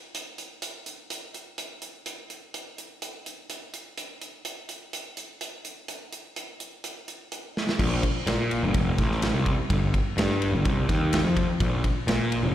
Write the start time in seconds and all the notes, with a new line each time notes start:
0.15 closed hi-hat
0.38 closed hi-hat
0.62 closed hi-hat
0.86 closed hi-hat
1.10 closed hi-hat
1.34 closed hi-hat
1.58 closed hi-hat
1.82 closed hi-hat
2.06 closed hi-hat
2.30 closed hi-hat
2.54 closed hi-hat
2.78 closed hi-hat
3.02 closed hi-hat
3.26 closed hi-hat
3.50 closed hi-hat
3.74 closed hi-hat
3.98 closed hi-hat
4.21 closed hi-hat
4.45 closed hi-hat
4.69 closed hi-hat
4.93 closed hi-hat
5.17 closed hi-hat
5.41 closed hi-hat
5.65 closed hi-hat
5.88 closed hi-hat
6.12 closed hi-hat
6.36 closed hi-hat
6.60 closed hi-hat
6.84 closed hi-hat
7.08 closed hi-hat
7.32 closed hi-hat
7.57 snare
7.69 snare
7.79 A#1, kick, crash
8.03 kick, ride
8.27 A#2, snare, ride
8.51 ride
8.63 G1
8.74 F1, kick, ride
8.98 A1, kick, snare, ride
9.11 snare
9.22 snare, ride
9.34 C2
9.46 kick, ride
9.70 G1, kick, ride
9.94 kick, ride
10.17 G2, snare, ride
10.42 ride
10.53 G1
10.65 C2, kick, ride
10.89 D#2, kick, snare, ride
11.13 snare, ride
11.24 F2
11.37 kick, ride
11.60 A#1, kick, ride
11.84 kick, ride
12.07 A#2, snare, ride
12.32 ride
12.43 F#1